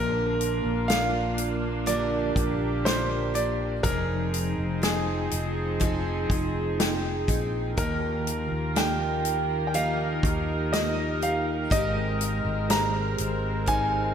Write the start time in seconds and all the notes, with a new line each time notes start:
Already playing: A#1 A#2 D3 F3 A#3 D4 F4 A#4
0.41 closed hi-hat
0.65 A#1
0.88 F3 A#3 D4 F4 A#4 D5 F5, snare, closed hi-hat
1.38 closed hi-hat
1.86 A#2 D3 F3 A#3 D4 F4 G4 A#4 D5, closed hi-hat
2.36 A#1, kick, closed hi-hat
2.85 F4 A#4 C5 D5, snare, closed hi-hat
3.34 F3 A#3 D4 A#4 D5, closed hi-hat
3.83 F1 F3 C4 D#4 G#4 A#4, kick, closed hi-hat
4.34 closed hi-hat
4.58 F1
4.82 F3 C4 D#4 F4 G#4, snare, closed hi-hat
5.31 F1, closed hi-hat
5.80 F3 C4 D#4 F4 G#4, kick, closed hi-hat
6.30 F1, kick, closed hi-hat
6.79 D#4 F4 G#4 G5, snare, closed hi-hat
7.28 A#1 C4 D#4 G#4, kick, closed hi-hat
7.77 D#2 D#3 F3 A#3 D#4 F4 G4 A#4, kick, closed hi-hat
8.27 closed hi-hat
8.52 D#2
8.76 F3 A#3 D#4 F4 G4 G5, snare, closed hi-hat
9.25 closed hi-hat
9.67 G5
9.74 D#3 F3 A#3 D#4 F4 G4 F5, closed hi-hat
10.23 D#2, kick, closed hi-hat
10.73 D#4 F4 G4 D#5, snare, closed hi-hat
11.22 A#3 D#4 G4 F5, closed hi-hat
11.70 G#1 G#3 C4 D#4 G4 D#5, kick, closed hi-hat
12.21 closed hi-hat
12.45 G#1
12.69 G4 G#4 C5 A#5, snare, closed hi-hat
13.18 G#1, closed hi-hat
13.66 G#3 C4 D#4 G#4 C5 G#5, kick, closed hi-hat